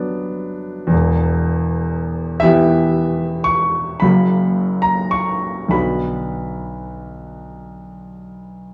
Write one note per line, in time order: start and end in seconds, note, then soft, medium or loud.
0.00 0.87 G1 medium
0.00 0.88 G2 medium
0.00 0.94 F#3 medium
0.00 0.94 B3 medium
0.00 0.94 D4 medium
0.00 0.91 D5 medium
0.87 3.95 E2 medium
0.91 3.97 E1 medium
2.40 3.97 E3 medium
2.40 3.97 B3 medium
2.40 3.98 G4 medium
2.40 3.46 E5 loud
3.44 4.00 C#6 medium
4.00 5.69 F#1 medium
4.00 5.69 F#2 medium
4.00 5.69 C#3 soft
4.00 5.69 A#3 soft
4.00 5.69 F#4 soft
4.00 4.84 B5 medium
4.82 5.12 A#5 medium
5.11 5.71 C#6 medium
5.69 8.74 B1 soft
5.69 8.74 D3 soft
5.69 8.74 B3 soft
5.69 8.74 F#4 soft
5.69 8.74 B5 medium